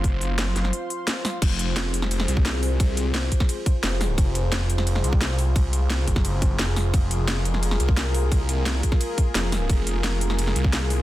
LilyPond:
<<
  \new Staff \with { instrumentName = "Analog synth pad" } { \time 4/4 \key f \phrygian \tempo 4 = 174 << { <f' c'' f''>1 | <f' aes'>1~ | <f' aes'>1~ | <f' aes'>1~ |
<f' aes'>1~ | <f' aes'>1~ | <f' aes'>1~ | <f' aes'>1 | } \\ { c'''1 | c''1~ | c''1~ | c''1~ |
c''1 | bes'1~ | bes'1~ | bes'1 | } >> }
  \new Staff \with { instrumentName = "Detuned saw bass" } { \clef bass \time 4/4 \key f \phrygian ges,,4. ges,,8 r2 | f,,2~ f,,8 c,4. | c,4. r4. f,,4 | f,,2~ f,,8 c,4. |
c,4. ges,,4. f,,4 | f,,2~ f,,8 c,4. | c,4. r4. f,,4 | f,,2~ f,,8 c,4. | }
  \new DrumStaff \with { instrumentName = "Drums" } \drummode { \time 4/4 <hh bd>8 hh8 <hh sn>8 <hh sn>16 sn16 hh8 hh8 <hh sn>8 <hho sn>8 | <cymc hh bd cymr>8 <hh cymr>8 <hh cymr sn>8 <hh cymr>16 sn16 <hh cymr>16 sn16 <hh cymr>16 bd16 <hh cymr sn>8 <hho cymr>8 | <hh bd cymr>8 <hh cymr>8 <hh cymr sn>8 <hh bd cymr>16 <bd sn>16 <hh cymr>8 <hh bd cymr>8 <hh cymr sn>8 <hho cymr sn>8 | <hh bd cymr>8 <hh cymr>8 <hh cymr sn>8 <hh cymr>16 sn16 <hh cymr>16 sn16 <hh cymr>16 bd16 <hh cymr sn>8 <hho cymr>8 |
<hh bd cymr>8 <hh cymr>8 <hh cymr sn>8 <hh bd cymr>16 <bd sn>16 <hh cymr>8 <hh bd cymr>8 <hh cymr sn>8 <hho cymr sn>8 | <hh bd cymr>8 <hh cymr>8 <hh cymr sn>8 <hh cymr>16 sn16 <hh cymr>16 sn16 <hh cymr>16 bd16 <hh cymr sn>8 <hho cymr>8 | <hh bd cymr>8 <hh cymr>8 <hh cymr sn>8 <hh bd cymr>16 <bd sn>16 <hh cymr>8 <hh bd cymr>8 <hh cymr sn>8 <hho cymr sn>8 | <hh bd cymr>8 <hh cymr>8 <hh cymr sn>8 <hh cymr>16 sn16 <hh cymr>16 sn16 <hh cymr>16 bd16 <hh cymr sn>8 <hho cymr>8 | }
>>